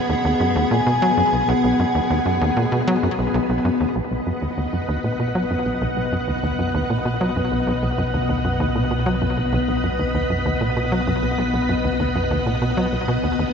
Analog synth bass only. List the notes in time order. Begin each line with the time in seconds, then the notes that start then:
0.09 D#2
0.25 D#2
0.40 F#2
0.56 D#2
0.71 A#2
0.87 B2
1.02 F#3
1.18 F#2
1.33 B1
1.48 B1
1.64 B1
1.80 F#2
1.95 D#2
2.10 D#2
2.26 F#2
2.41 D#2
2.57 A#2
2.72 B2
2.88 F#3
3.03 F#2
3.19 B1
3.34 B1
3.49 B1
3.65 F#2
3.81 D#2
3.96 B1
4.11 B1
4.27 F#2
4.42 D#2
4.58 D#2
4.73 F#2
4.89 D#2
5.04 A#2
5.20 B2
5.35 F#3
5.51 F#2
5.66 B1
5.82 B1
5.97 B1
6.12 F#2
6.28 D#2
6.43 D#2
6.59 F#2
6.74 D#2
6.90 A#2
7.05 B2
7.21 F#3
7.36 F#2
7.52 B1
7.67 B1
7.83 B1
7.98 F#2
8.14 D#2
8.29 D#2
8.45 F#2
8.60 D#2
8.75 A#2
8.91 B2
9.06 F#3
9.22 F#2
9.37 B1
9.53 B1
9.68 B1
9.84 F#2
9.99 D#2
10.15 D#2
10.30 F#2
10.46 D#2
10.61 A#2
10.77 B2
10.92 F#3
11.07 F#2
11.23 B1
11.38 B1
11.54 B1
11.69 F#2
11.84 D#2
12.00 D#2
12.15 F#2
12.31 D#2
12.46 A#2
12.62 B2
12.77 F#3
12.93 B1
13.08 B2
13.24 D#2
13.39 D#2